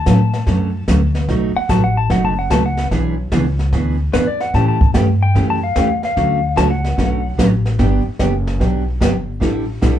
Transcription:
Already playing: electric slide guitar A5
0.06 upright bass A2, steel-string acoustic guitar D3 F#3 A3 C#4 F#4, kick, snare, hi-hat pedal
0.33 snare
0.46 upright bass F#2, steel-string acoustic guitar D3 F#3 A3 C#4 F#4, brush sweep, kick, snare
0.88 upright bass D2, steel-string acoustic guitar D3 F#3 A3 C#4 F#4, kick, snare, hi-hat pedal
1.15 snare
1.28 upright bass B1, steel-string acoustic guitar B2 F#3 A3 D#4 F#4, brush sweep, kick, snare
1.56 electric slide guitar F#5, muted upright bass stroke
1.69 upright bass A1, steel-string acoustic guitar B2 F#3 A3 D#4 F#4, electric slide guitar A5, kick, snare, hi-hat pedal
1.84 electric slide guitar F#5
1.97 electric slide guitar A5
2.10 upright bass F#1, steel-string acoustic guitar B2 F#3 A3 D#4 F#4, electric slide guitar F#5, brush sweep, kick, snare
2.25 electric slide guitar A5
2.39 electric slide guitar F#5
2.50 upright bass C#2, steel-string acoustic guitar B2 F#3 A3 D#4 F#4, electric slide guitar A5, kick, snare, hi-hat pedal
2.66 electric slide guitar F#5
2.77 snare
2.91 upright bass B1, steel-string acoustic guitar B2 E3 B3 D4 G#4, brush sweep, kick, snare
3.32 upright bass C#2, steel-string acoustic guitar B2 E3 B3 D4 G#4, kick, snare, hi-hat pedal
3.59 snare
3.73 upright bass D2, steel-string acoustic guitar B2 E3 B3 D4 G#4, brush sweep, kick, snare
4.13 upright bass E2, steel-string acoustic guitar B2 E3 B3 D4 G#4, electric slide guitar B4, kick, snare, hi-hat pedal
4.27 electric slide guitar D5
4.40 electric slide guitar F#5, snare
4.54 upright bass A2, steel-string acoustic guitar C#3 E3 A3 C#4 G4, electric slide guitar A5, brush sweep, kick, snare
4.68 electric slide guitar A5
4.81 kick
4.94 upright bass G2, steel-string acoustic guitar C#3 E3 A3 C#4 G4, kick, snare, hi-hat pedal
5.23 electric slide guitar G5
5.35 upright bass F#2, steel-string acoustic guitar C#3 E3 A3 C#4 G4, brush sweep, kick, snare
5.50 electric slide guitar A5
5.63 electric slide guitar F5
5.75 upright bass E2, steel-string acoustic guitar C#3 E3 A3 C#4 G4, kick, snare, hi-hat pedal
6.03 electric slide guitar F5, snare
6.16 upright bass D2, steel-string acoustic guitar D3 F#3 A3 C#4 F#4, brush sweep, kick, snare
6.56 upright bass C#2, steel-string acoustic guitar D3 F#3 A3 C#4 F#4, electric slide guitar A5, kick, snare, hi-hat pedal
6.71 electric slide guitar F#5
6.84 snare
6.97 upright bass B1, steel-string acoustic guitar D3 F#3 A3 C#4 F#4, brush sweep, kick, snare
7.38 upright bass A1, steel-string acoustic guitar D3 F#3 A3 C#4 F#4, kick, snare, hi-hat pedal
7.66 snare
7.79 upright bass G1, steel-string acoustic guitar D3 F#3 B3 D4 G4, brush sweep, kick, snare
8.06 muted upright bass stroke
8.19 upright bass F#1, steel-string acoustic guitar D3 F#3 B3 D4 G4, kick, snare, hi-hat pedal
8.47 snare
8.59 upright bass B1, steel-string acoustic guitar D3 F#3 B3 D4 G4, brush sweep, kick, snare
9.00 upright bass G1, steel-string acoustic guitar D3 F#3 B3 D4 G4, kick, snare, hi-hat pedal
9.40 upright bass A1, steel-string acoustic guitar D3 G3 D4 E4 A4, brush sweep, kick, snare
9.81 upright bass B1, steel-string acoustic guitar D3 G3 D4 E4 A4, kick, snare, hi-hat pedal

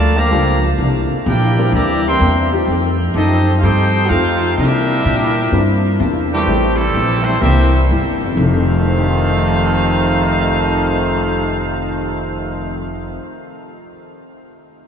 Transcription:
Already playing: upright bass D2, hollow-body jazz guitar G2 F3 A#3 D4, trombone section A3, trumpet section F4 A#4 D5 A5
0.17 trombone section D3 F3 A#3, trumpet section G4 D5 F5 A#5
0.31 upright bass C#2, hollow-body jazz guitar G2 F3 A#3 D4, grand piano G3 A#3 D4 F4 A4
0.78 upright bass C2, hollow-body jazz guitar C3 E3 A#3 D4
1.10 muted upright bass stroke
1.26 upright bass A#1, hollow-body jazz guitar C3 E3 A#3 D4, trombone section A#3 E4 G4, trumpet section E4 A#4 D5 G5
1.59 grand piano G3 C4 D4 E4 A#4
1.72 upright bass D2, hollow-body jazz guitar C3 E3 A#3 D4, trombone section E3 G3 A#3, trumpet section G4 D5 E5 A#5
2.06 trombone section E3 G3 C4, trumpet section A#4 E5 G5 C6
2.20 upright bass E2, hollow-body jazz guitar C3 E3 A#3 D4
2.52 grand piano G3 C4 D#4 F4 G4
2.68 upright bass F2, hollow-body jazz guitar F3 A3 D#4
2.72 hollow-body jazz guitar G4
3.14 upright bass F#2, hollow-body jazz guitar F3 A3 D#4 G4, trombone section A3 C4 D#4, trumpet section C4 G4 A4 D#5
3.58 trombone section C4 D#4 G4, trumpet section D#4 A4 C5 F5 G5
3.63 upright bass G2, hollow-body jazz guitar F3 A3 D#4 G4
4.07 upright bass F2, hollow-body jazz guitar F3 A3, trombone section A3 C4 F4, trumpet section D#4 A4 C5 F5
4.12 hollow-body jazz guitar D#4 G4
4.56 upright bass C3, hollow-body jazz guitar C3 E3, trombone section G3 A#3 E4, trumpet section D4 G4 A#4 E5
4.60 hollow-body jazz guitar A#3 D4
5.05 upright bass A#2, hollow-body jazz guitar C3 E3 A#3 D4
5.52 upright bass G2, hollow-body jazz guitar C3 E3 A#3 D4, grand piano G3 C4 D4 E4 A#4
5.99 upright bass E2, hollow-body jazz guitar C3 E3 A#3 D4
6.32 trombone section C3 E3 G3, trumpet section A3 C4 G4
6.47 upright bass A1, hollow-body jazz guitar A2 G3 C4 E4, grand piano G3 A3 C4 E4 G4
6.75 trombone section C3 E3 A3, trumpet section G3 C4 E4 A4
6.94 upright bass A#1, hollow-body jazz guitar A2 G3 C4 E4
7.23 trombone section E3 G3 C4, trumpet section A3 E4 G4 C5
7.40 upright bass C2, hollow-body jazz guitar C3 G3, grand piano E3 A#3 C4 D4 A4, trombone section G3 A#3 E4, trumpet section C4 G4 A#4 E5
7.44 hollow-body jazz guitar A#3 E4
7.89 upright bass G1, hollow-body jazz guitar C3 G3 A#3 E4
8.24 grand piano F2
8.29 grand piano C3
8.34 upright bass F1, hollow-body jazz guitar F2, trombone section F2 C3 D#3 A3, grand piano D#3, trumpet section D#4 A4 C5 F5
8.39 hollow-body jazz guitar D#3 A3, grand piano A3
8.44 grand piano D#4
8.49 grand piano G4
8.84 grand piano C5
8.92 grand piano D#5
9.00 grand piano G5
9.09 grand piano C6
9.19 grand piano D#6
9.30 grand piano G6
9.41 grand piano C7

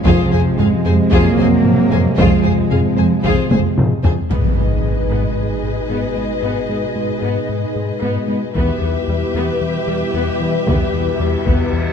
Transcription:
0.04 double bass section F2, analog synth bass F2, trombone section C3 G#3, french horn section C3, cello section F3, analog synth pad G#3 C4 G#4, violin section F4 C5, viola section G#4, taiko
0.32 double bass section F2, analog synth bass F2, viola section G#4, violin section C5 G#5
0.58 double bass section F2, analog synth bass F2, french horn section F3, cello section G#3, violin section G#4 F5, viola section G#4, taiko low-mid
0.85 double bass section F2, analog synth bass F2, viola section G#4, violin section C5 G#5
1.11 double bass section F2, analog synth bass F2, french horn section F#3, cello section A#3, violin section F4 C5, viola section G#4, taiko
1.38 analog synth bass F2, double bass section F2, viola section G#4, violin section C5 G#5
1.64 analog synth bass F3, taiko low-mid
1.91 analog synth bass F2, double bass section F2, viola section G#4, violin section C5 G#5, taiko low-mid
2.16 double bass section F2, analog synth bass F2, french horn section F3, cello section G#3, violin section F4 C5, viola section G#4, taiko
2.43 double bass section F2, analog synth bass F2, viola section G#4, violin section C5 G#5
2.70 double bass section F2, analog synth bass F2, violin section G#4 F5, viola section G#4, taiko low-mid
2.97 analog synth bass F2, double bass section F2, viola section G#4, violin section C5 G#5
3.24 analog synth bass F2, double bass section F2, violin section F4 C5, viola section G#4, taiko
3.50 analog synth bass F2, double bass section F2, viola section G#4, violin section C5 G#5, taiko high
3.78 analog synth bass F3, taiko low-mid
4.03 double bass section F2, analog synth bass F2, viola section G#4, violin section C5 G#5, taiko low
4.30 analog synth bass G#2, cello section G#2, trombone section B2 G#3, analog synth pad G#3 D#4 G#4 B4, viola section B3 G#4, violin section B4 D#5, taiko, impact
4.57 analog synth bass G#2, cello section G#2, viola section B3
4.83 analog synth bass G#2, cello section G#2, viola section G#3
5.10 analog synth bass G#2, cello section G#2, viola section B3
5.36 analog synth bass G#2
5.63 cello section G#2, analog synth bass G#2, viola section G#3
5.90 analog synth bass G#2, cello section G#2, viola section B3
6.16 cello section G#2, analog synth bass G#3, viola section B3
6.42 analog synth bass G#2, cello section G#2, viola section B3
6.69 analog synth bass G#2, cello section G#2, viola section B3
6.96 analog synth bass G#2, cello section G#2, viola section G#3
7.22 analog synth bass G#2, cello section G#2, viola section B3
7.49 analog synth bass G#2
7.75 cello section G#2, analog synth bass G#2, viola section G#3
8.02 cello section G#2, analog synth bass G#2, viola section B3
8.28 cello section G#2, analog synth bass G#3, viola section B3
8.55 analog synth bass E2, cello section E2, trombone section B2 G3, analog synth pad B3 E4 G4 B4, viola section B3 G4, violin section B4 E5, taiko
8.81 analog synth bass E2, cello section E2, viola section B3
9.08 analog synth bass E2, cello section E2, viola section G3
9.34 analog synth bass E2, cello section E2, viola section B3
9.61 analog synth bass E2
9.87 analog synth bass E2, cello section E2, viola section G3
10.14 analog synth bass E2, cello section E2, viola section B3
10.40 cello section E2, analog synth bass E3, viola section B3
10.67 analog synth bass E2, viola section B3, taiko, reverse cymbal
10.94 analog synth bass E2, cello section E2, viola section B3
11.20 analog synth bass E2, cello section E2, viola section G3
11.46 analog synth bass E2, cello section E2, viola section B3, taiko
11.73 analog synth bass E2

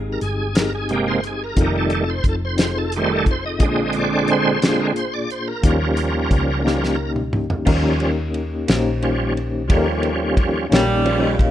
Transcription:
Already playing: fingered electric bass G#1, tine electric piano G#3 C4 D#4 G4 G#4
0.13 tonewheel organ A#4
0.21 fingered electric bass G1, tonewheel organ G#4, closed hi-hat
0.54 tine electric piano C4 D#4 G4 G#4, tonewheel organ A#4, snare, closed hi-hat
0.75 tonewheel organ G#4
0.89 tonewheel organ C3 G#3 A#3 G4, closed hi-hat
1.08 tonewheel organ C5
1.24 tonewheel organ G#4, closed hi-hat
1.44 tonewheel organ A#4
1.56 fingered electric bass F1, tine electric piano C4 D#4 F4 A4, kick, closed hi-hat
1.61 tonewheel organ D#3 G3 A3
1.78 tonewheel organ A4
1.90 closed hi-hat
1.95 tonewheel organ A4
2.10 tonewheel organ C5
2.24 fingered electric bass F1, kick, closed hi-hat
2.29 tonewheel organ A4
2.45 tonewheel organ C5
2.56 tine electric piano C4 D#4 F4 G#4, snare, closed hi-hat
2.66 tine electric piano A4
2.78 tonewheel organ A4
2.92 closed hi-hat
2.96 tonewheel organ D#3 G3 A3 C5
3.12 tonewheel organ A4
3.26 kick, closed hi-hat
3.31 tonewheel organ C5
3.46 tonewheel organ D#5
3.59 fingered electric bass A#1, tine electric piano A#2 A#3 D4 F4 G#4, tonewheel organ G#3, kick, closed hi-hat
3.63 tonewheel organ D3 C4
3.93 closed hi-hat
3.97 tonewheel organ D5
4.28 fingered electric bass G#1, closed hi-hat
4.32 tonewheel organ C5
4.61 tonewheel organ D3 G#3 C4, tine electric piano A#3 D4 F4 G#4, snare, closed hi-hat
4.80 tonewheel organ A#4
4.96 tonewheel organ C5, closed hi-hat
5.14 tonewheel organ D5
5.30 tonewheel organ C5, closed hi-hat
5.48 tonewheel organ A#4
5.62 fingered electric bass D#2, tine electric piano D#3 A#3 C#4 D#4 G4, tonewheel organ F3 G3, kick, closed hi-hat
5.67 tonewheel organ C#4
5.97 closed hi-hat
6.31 fingered electric bass C#2, kick, closed hi-hat
6.64 tonewheel organ F3 G3 C#4, tine electric piano A#3 C#4 D#4 G4, snare
6.84 snare
7.16 mid tom
7.33 mid tom
7.50 floor tom
7.65 fingered electric bass D#2, tine electric piano D#3 A#3 C#4 D#4 G4 A#4, tonewheel organ F3 G3 C#4, kick, crash
8.00 ride bell
8.34 ride bell
8.68 fingered electric bass A#1, tine electric piano A#3 C#4 D#4 G4 C5, snare, ride bell
9.02 tonewheel organ F3 G3 C#4, ride bell
9.37 ride bell
9.68 fingered electric bass D#2, tine electric piano D#3 A#3 C#4 D#4 G4 A4, tonewheel organ F3 G3 C#4, kick, ride bell
9.78 tine electric piano A#4
10.03 ride bell
10.37 kick, ride bell
10.70 fingered electric bass A#1, saxophone section A#2 C#3 G3, tine electric piano A#3 C#4 D#4 G4 C#5, snare, ride bell
11.05 tonewheel organ F3 G3 C#4, ride bell
11.21 tine electric piano G4 D#5
11.39 tine electric piano F5, kick, ride bell

